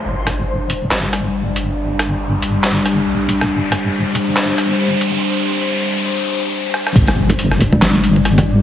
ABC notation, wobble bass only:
X:1
M:4/4
L:1/8
Q:"Swing 16ths" 1/4=139
K:Cdor
V:1 name="Wobble bass" clef=bass
G,,,4 G,,,3 G,,,- | G,,,3 G,,,3 B,,,2 | G,,,4 G,,,3 G,,, | z8 |
G,,,4 G,,,3 G,,, |]